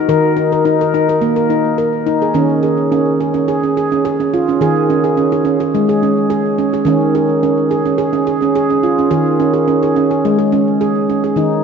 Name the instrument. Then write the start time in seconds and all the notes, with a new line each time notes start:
handpan
0.09 D#3 A#4
0.37 D#4
0.53 A#4
0.65 D#4
0.81 A#4
0.94 D#4
1.09 A#4
1.21 A#3
1.36 A#4
1.50 D#4
1.78 A#4
2.07 D#4
2.22 G#4
2.34 D#3 C#4
2.63 G#4
2.92 C#4
3.21 G#4
3.34 C#4
3.48 G#4
3.63 C#4
3.77 G#4
3.92 C#4
4.05 G#4
4.20 C#4
4.34 F4
4.49 C#4
4.61 D#3 G#4
4.90 C#4
5.04 G#4
5.17 C#4
5.32 G#4
5.45 C#4
5.60 G#4
5.75 G#3
5.89 G#4
6.03 C#4
6.30 G#4
6.58 C#4
6.74 G#4
6.85 D#3 C#4
7.15 G#4
7.43 C#4
7.71 G#4
7.85 C#4
7.98 G#4
8.13 C#4
8.27 G#4
8.42 C#4
8.55 G#4
8.70 C#4
8.83 F4
8.99 C#4
9.11 D#3 G#4
9.40 C#4
9.53 G#4
9.68 C#4
9.83 G#4
9.96 C#4
10.11 G#4
10.25 G#3
10.39 G#4
10.52 C#4
10.81 G#4
11.10 C#4
11.24 G#4
11.36 D#3 D#4